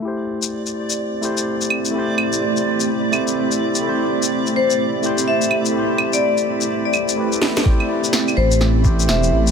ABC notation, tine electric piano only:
X:1
M:4/4
L:1/16
Q:"Swing 16ths" 1/4=126
K:Am
V:1 name="Tine electric piano"
[A,EGc]8- [A,EGc]2 [A,EGc] z4 z | [A,EGc]8- [A,EGc]2 [A,EGc] z4 z | [A,EGc]8- [A,EGc]2 [A,EGc] z4 z | [A,EGc]8- [A,EGc]2 z2 [A,EGB]4 |
[A,EGc]8- [A,EGc]2 [A,EGc] z4 z |]